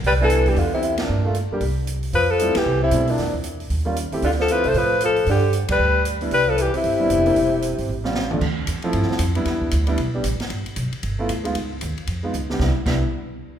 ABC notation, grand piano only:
X:1
M:4/4
L:1/8
Q:"Swing" 1/4=229
K:C
V:1 name="Grand piano"
z [G,B,DE]2 [G,B,DG] z4 | z [A,_B,DF] z [G,B,DG] z4 | z2 [G,A,CE] z3 [G,A,CE]2 | z4 z [G,_B,_DF] z [A,CEG] |
z2 [A,CEF] z4 z | z6 z [G,B,DE] | z4 z [G,B,DE]2 [G,_B,DE] | z4 z [G,^B,^C^E]2 [D,,^E,A,B,D] |
z3 [F,A,CE]2 [F,A,CE] z [G,B,DE]- | [G,B,DE]2 z [G,B,DE] z [G,B,DG] z2 | z4 z [A,B,EF] z [_A,B,_EF] | z4 z [_A,_C_EF] z [=C,G,_CDG] |
[G,B,DE] z [G,B,DE] z4 z |]